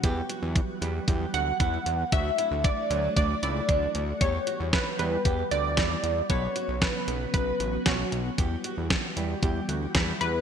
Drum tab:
HH |xxxxxxxx|xxxxxxxx|xxxxxxxx|xxxxxxxx|
SD |--------|--------|--o---o-|--o---o-|
BD |o-o-o-o-|o-o-o-o-|o-o-o-o-|o-o-o-o-|

HH |xxxxxxxx|
SD |--o---o-|
BD |o-o-o-o-|